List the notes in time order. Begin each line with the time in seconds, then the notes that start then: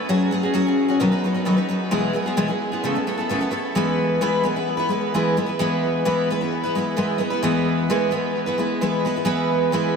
0.09 F#3 C#4 F#4 G#4
0.31 F#3 C#4 F#4 G#4
0.43 C#4 F#4 G#4
0.54 F#3 C#4 F#4 G#4
0.67 C#4 F#4 G#4
0.88 C#4 F#4 G#4
1.00 B2 D#3 F#3 B3 D#4 B4
1.12 F#3 B3 D#4 B4
1.24 F#3 B3 D#4 B4
1.34 F#3 B3 D#4 B4
1.45 B2 D#3 F#3 B3 D#4 B4
1.57 F#3 B3 D#4 B4
1.69 F#3 B3 D#4 B4
1.91 B2 E3 G#3 B3 E4 G#4
2.13 G#3 B3 E4 G#4
2.26 G#3 B3 E4 G#4
2.37 B2 E3 G#3 B3 E4 G#4
2.48 G#3 B3 E4 G#4
2.72 G#3 B3 E4 G#4
2.84 C#3 A3 B3 E4 A4
2.95 B3 E4 A4
3.07 A3 B3 E4 A4
3.18 B3 E4 A4
3.29 C#3 A3 B3 E4 A4
3.40 B3 E4 A4
3.51 A3 B3 E4 A4
3.75 E3 G#3 B3 E4 B4
4.21 E3 G#3 B3 E4 B4
4.43 G#3 B3 E4 B4
4.56 B3 E4 B4
4.77 B3 E4 B4
4.89 G#3 B3 E4 B4
5.14 E3 G#3 B3 E4 B4
5.37 G#3 B3 E4 B4
5.46 B3 E4 B4
5.59 E3 G#3 B3 E4 B4
6.05 E3 G#3 B3 E4 B4
6.30 G#3 B3 E4 B4
6.41 B3 E4 B4
6.64 B3 E4 B4
6.75 G#3 B3 E4 B4
6.97 E3 G#3 B3 E4 B4
7.18 G#3 B3 E4 B4
7.30 B3 E4 B4
7.43 E3 G#3 B3 E4 B4
7.90 E3 G#3 B3 E4 B4
8.11 G#3 B3 E4 B4
8.46 B3 E4 B4
8.58 G#3 B3 E4 B4
8.81 E3 G#3 B3 E4 B4
9.05 G#3 B3 E4 B4
9.16 B3 E4 B4
9.25 E3 G#3 B3 E4 B4
9.72 E3 G#3 B3 E4 B4